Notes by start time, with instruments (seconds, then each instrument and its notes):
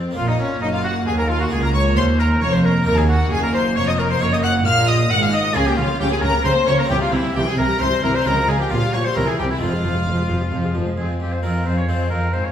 Already playing: harpsichord F2, violin section C4 F5, viola section C4
0.11 harpsichord A#3 C#4 F4
0.15 double bass section A#1, harpsichord A#2, cello section A#2, viola section A#3, oboe F4, violin section F4 F5
0.27 oboe D#4, violin section D#4 D#5
0.39 oboe C#4, violin section C#4 C#5
0.60 double bass section F#1, harpsichord F#2, cello section F#2, oboe D#4, violin section D#4 D#5
0.73 oboe F4, violin section F4 F5
0.84 oboe F#4, violin section F#4 F#5
1.06 harpsichord D#2, double bass section D#2, cello section D#2, oboe G#4, violin section G#4 G#5
1.18 oboe A#4, violin section A#4 A#5
1.29 oboe F4, violin section F4 F5
1.40 violin section F#4 F#5, oboe F#4
1.47 harpsichord A#3 F4 A#4
1.51 harpsichord C#2, double bass section C#2, cello section C#2, viola section A#3, violin section G#4 G#5, oboe G#4
1.62 violin section A#4 A#5, oboe A#4
1.74 oboe C#5, violin section C#5 C#6
1.96 harpsichord D#2, double bass section D#2, cello section D#2, violin section C5 C6, oboe C5
2.19 violin section A#4 A#5, oboe A#4
2.41 double bass section F1, harpsichord F2, cello section F2, viola section A#3, violin section C#5 C#6, oboe C#5
2.53 violin section C5 C6, oboe C5
2.63 violin section A#4 A#5, oboe A#4
2.82 double bass section D#2, harpsichord A#3 D#4 A#4, violin section A#4
2.86 cello section D#2, harpsichord D#2, viola section A#3, oboe A#4, violin section A#5
2.97 violin section G#4 G#5, oboe G#4
3.08 violin section F#4 F#5, oboe F#4
3.31 double bass section F#1, harpsichord F#2, cello section F#2, oboe G#4, violin section G#4 G#5
3.43 violin section A#4 A#5, oboe A#4
3.54 oboe C5, violin section C5 C6
3.76 double bass section F1, cello section F2, harpsichord F2, violin section C#5 C#6, oboe C#5
3.88 oboe D#5, violin section D#5 D#6
3.99 violin section A#4 A#5, oboe A#4
4.10 violin section C5 C6, oboe C5
4.16 harpsichord A#3 D#4 A#4
4.21 double bass section F#1, harpsichord F#2, cello section F#2, viola section A#3, violin section C#5 C#6, oboe C#5
4.32 violin section D#5 D#6, oboe D#5
4.43 oboe F#5, violin section F#5 F#6
4.65 double bass section A#1, cello section A#2, harpsichord A#2, oboe F5, violin section F5 F6
4.87 violin section D#5 D#6, oboe D#5
5.10 double bass section G#1, harpsichord G#2, cello section G#2, viola section A#3, oboe F#5, violin section F#5 F#6
5.21 violin section F5 F6, oboe F5
5.32 violin section D#5 D#6, oboe D#5
5.51 harpsichord A#3 F4 A#4, violin section G#4, oboe G#4
5.55 double bass section C#2, harpsichord C#3, cello section C#3, viola section C#4, violin section G#5
5.66 viola section A#3, violin section G4 G5, oboe G4
5.77 double bass section C#2, cello section C#3, harpsichord C#3, viola section C#4, oboe F4, violin section F4 F5
5.88 viola section A#3
6.00 double bass section C#2, harpsichord C#3, cello section C#3, viola section C#4, oboe G4, violin section G4 G5
6.11 viola section A#3, violin section G#4 G#5, oboe G#4
6.22 double bass section C#2, harpsichord C#3, cello section C#3, viola section C#4, oboe A#4, violin section A#4 A#5
6.34 viola section A#3
6.45 double bass section C#2, harpsichord C#3, cello section C#3, viola section C#4, oboe C5, violin section C5 C6
6.56 viola section A#3
6.67 double bass section C#2, harpsichord C#3, cello section C#3, viola section C#4, oboe C#5, violin section C#5 C#6
6.78 viola section A#3, oboe A#4, violin section A#4 A#5
6.85 harpsichord C4 G4
6.89 double bass section C2, harpsichord C3, cello section C3, viola section E3, oboe G4, violin section G4 G5
7.01 viola section G3, oboe F4, violin section F4 F5
7.12 double bass section C2, harpsichord C3, cello section C3, viola section E3, oboe E4, violin section E4 E5
7.24 viola section G3
7.34 double bass section C2, harpsichord C3, cello section C3, viola section E3, violin section G4 G5, oboe G4
7.46 viola section G3, violin section G#4 G#5, oboe G#4
7.57 double bass section C2, harpsichord C3, cello section C3, viola section E3, violin section A#4 A#5, oboe A#4
7.68 viola section G3
7.80 double bass section C2, harpsichord C3, cello section C3, viola section E3, oboe C5, violin section C5 C6
7.91 viola section G3
8.03 double bass section C2, harpsichord C3, cello section C3, viola section E3, oboe A#4, violin section A#4 A#5
8.15 viola section G3, violin section C5 C6, oboe C5
8.21 harpsichord G#3 C#4 F4
8.25 double bass section C#2, harpsichord C#3, cello section C#3, viola section G#3, oboe A#4, violin section A#4 A#5
8.38 viola section F3
8.48 double bass section C#2, harpsichord C#3, cello section C#3, viola section G#3, violin section G#4 G#5, oboe G#4
8.59 viola section F3, violin section G4 G5, oboe G4
8.68 double bass section A#1, harpsichord A#2 C#4 G4, cello section A#2, viola section F3, oboe F4, violin section F4 F5
8.82 viola section G3
8.93 double bass section A#1, harpsichord A#2, cello section A#2, viola section F3, oboe C#5, violin section C#5 C#6
9.05 viola section G3, oboe C5, violin section C5 C6
9.13 double bass section C2, harpsichord C3 C4 E4, cello section C3, viola section G3, oboe A#4, violin section A#4 A#5
9.27 viola section E3, oboe G#4, violin section G#4 G#5
9.39 double bass section C2, cello section C3, harpsichord C3, viola section G3, oboe G4, violin section G4 G5
9.50 viola section E3, oboe E4, violin section E4 E5
9.57 harpsichord G#3 C4 F4
9.61 double bass section F1, harpsichord F2, cello section F2, viola section F3, oboe F4, violin section F4 F5
9.74 viola section G#3
9.84 double bass section F1, harpsichord F2, cello section F2, viola section F3
9.96 viola section G#3
10.07 double bass section F1, harpsichord F2, cello section F2, viola section F3
10.19 viola section G#3
10.30 double bass section F1, harpsichord F2, cello section F2, viola section F3
10.42 viola section G#3
10.52 double bass section F1, harpsichord F2, cello section F2, viola section F3
10.65 viola section G#3
10.75 double bass section F1, harpsichord F2, cello section F2, viola section F3
10.87 viola section G#3
10.97 harpsichord F2, cello section F2, viola section C4, violin section F4 G#5, oboe G#4
11.20 harpsichord F2, cello section F2, viola section C4, violin section F4 G#5, oboe G4
11.33 oboe C5
11.43 harpsichord F2 G#3 C4 F4, cello section F2, viola section C4, violin section F4 G#5, oboe A#4
11.66 harpsichord F2, cello section F2, viola section C4, violin section F4 G#5, oboe C5
11.77 oboe C#5
11.87 cello section F2, harpsichord F2 G#3 C4 F4, viola section C4, violin section F4 G#5, oboe C5
12.10 cello section F2, harpsichord F2, viola section C4, violin section F4 G#5, oboe A#4
12.32 cello section G#2, harpsichord G#2, viola section C4, violin section F4 G#5, oboe C5
12.45 oboe C#5